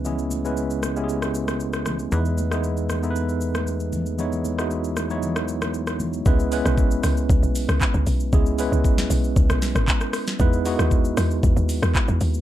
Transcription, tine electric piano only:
X:1
M:4/4
L:1/16
Q:1/4=116
K:C#m
V:1 name="Tine electric piano"
[G,B,CEG]2 z [G,B,CEB]3 z [G,B,CE=G^G]6 z3 | [G,B,DEB]2 z [G,B,DEG]3 z [G,B,DEAB]6 z3 | [G,B,DEc]2 z [G,B,DEF]3 z [F,G,B,DEc]6 z3 | [G,B,CEB]2 [G,B,CEB]6 z8 |
[G,B,CEG]2 [G,B,CEB]6 z8 | [G,B,DEB]2 [G,B,DEF]6 z8 |]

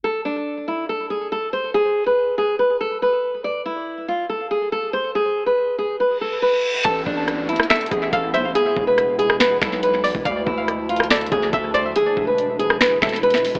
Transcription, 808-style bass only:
X:1
M:4/4
L:1/16
Q:1/4=141
K:Am
V:1 name="808-style bass" clef=bass
z16 | z16 | z16 | z16 |
A,,,2 A,,,4- A,,, z3 A,,,2 A,,,2 B,,, A,,, | z2 E,,,8 B,,,4- B,,, E,,, | D,,2 D,,8 D,,2 D,,4 | z2 E,,,8 E,,,4- E,,, E,,, |]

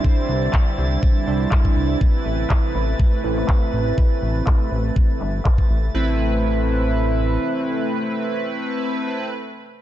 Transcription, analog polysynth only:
X:1
M:4/4
L:1/8
Q:1/4=122
K:Am
V:1 name="Analog polysynth"
[G,DEc]3 [G,DEc]2 [G,DEc]3 | [A,CEB]3 [A,CEB]2 [A,CEB]3 | [A,CEB]3 [A,CEB]2 z3 | [A,CEB]8- |
[A,CEB]8 |]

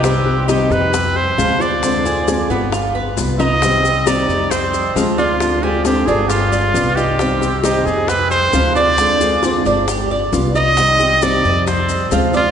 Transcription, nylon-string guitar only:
X:1
M:4/4
L:1/8
Q:1/4=134
K:Cm
V:1 name="Nylon-string guitar"
[C,E,G,CG] [G,CG] [C,E,G,CG] [G,CG] z2 [C,F,A,CF] [A,CF] | [D,A,CF] [A,CF] [D,A,CF] [A,CF] z2 [G,=B,F] [B,F] | [C,E,G,CG] [G,CG] [C,E,G,CG] [G,CG] z2 [C,F,A,CF] [A,CF] | [D,A,CF] [A,CF] [D,A,CF] [A,CF] z2 [G,=B,F] [B,F] |
[C,E,G,CG] [G,CG] [C,E,G,CG] [G,CG] z2 [C,F,A,CF] [A,CF] | [D,A,CF] [A,CF] [D,A,CF] [A,CF] z2 [G,=B,F] [B,F] | [C,E,G,CG] [G,CG] [C,E,G,CG] [G,CG] z2 [C,F,A,CF] [A,CF] |]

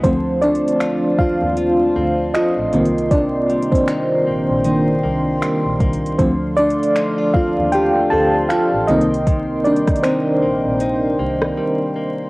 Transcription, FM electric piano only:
X:1
M:4/4
L:1/16
Q:"Swing 16ths" 1/4=78
K:Cdor
V:1 name="FM electric piano"
[Cc]2 [Dd]4 [Ff]6 [Fe]4 | [Dd]3 [Cc]4 z8 z | [Cc]2 [Dd]4 [Ff]2 [Gg]2 [Aa]2 [Ff]2 [Ee]2- | [Ee]2 [Dd]2 [Cc]6 z6 |]
V:2 name="FM electric piano"
[F,A,C]2 z12 [E,B,C]2- | [E,B,C]4 z4 [E,B,D]2 z6 | [F,A,C]6 z8 [E,B,C]2- | [E,B,C]4 z12 |]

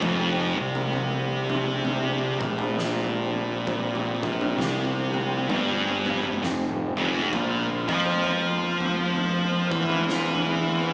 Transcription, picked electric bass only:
X:1
M:4/4
L:1/8
Q:"Swing" 1/4=66
K:F
V:1 name="Picked electric bass" clef=bass
F,,, C,,4 B,,,3- | B,,, B,,, C,,2 G,,,2 F,,, F,,, | B,,, F,,4 E,,3 |]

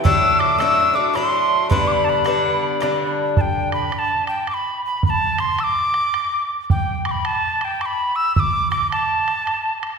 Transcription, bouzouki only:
X:1
M:3/4
L:1/8
Q:"Swing" 1/4=108
K:G
V:1 name="Bouzouki"
[A,,F,A,D]2 [A,,F,A,D] [F,A,D] [A,,F,A,D]2 | [G,,D,B,D]2 [G,,D,B,D]2 [G,,D,B,D]2 | z6 | z6 |
z6 | z6 |]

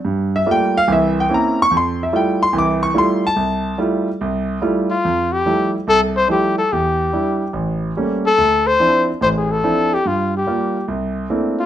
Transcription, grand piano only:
X:1
M:4/4
L:1/8
Q:"Swing" 1/4=144
K:F
V:1 name="Grand piano"
z e g f e g b _d' | c' e g c' d' _d' c' a- | a2 z6 | z8 |
z8 | z8 | z8 |]
V:2 name="Grand piano"
G,,2 [G,A,B,F] z [C,,E,]2 [B,C_DE] z | F,,2 [G,A,EF] z [C,,E,]2 [G,A,EF] z | C,,2 [G,A,EF] z C,,2 [G,A,EF] z | F,,2 [F,G,A,E] z C,,2 [F,G,A,E] z |
E,,2 [G,DE] z A,,,2 [G,A,B,^C] z | D,,2 [F,CDE] z [A,,,A,,]2 [F,CDE] z | G,,2 [G,B,F] z C,,2 [A,B,CDE] z |]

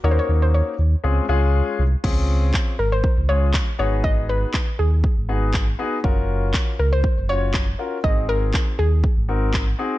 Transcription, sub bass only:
X:1
M:4/4
L:1/16
Q:1/4=120
K:Db
V:1 name="Sub bass" clef=bass
E,,2 E,,4 E,,2 D,,2 D,,4 C,,2 | D,,6 A,,,3 D,,4- D,, A,,,2- | A,,,6 E,,3 A,,,6- A,,, | G,,,6 D,,3 G,,,6- G,,, |
A,,,6 E,,3 A,,,6- A,,, |]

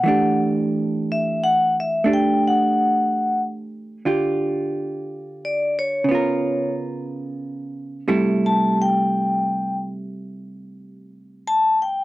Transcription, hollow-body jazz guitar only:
X:1
M:4/4
L:1/8
Q:"Swing" 1/4=60
K:Em
V:1 name="Hollow-body jazz guitar"
[E,A,DG]4 [A,DG]4 | [D,=FG]4 [^C,B,^E^A]4 | [C,G,A,E]8 |]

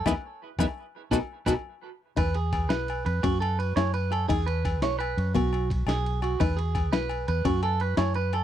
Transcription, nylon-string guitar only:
X:1
M:12/8
L:1/8
Q:3/8=114
K:E
V:1 name="Nylon-string guitar"
[B,DE] z2 [B,DE] z2 [B,DF] z [B,DF] z3 | D2 z E2 z C2 z E2 z | D2 z E2 z B,2 z D2 z | D2 z E2 z C2 z E2 z |]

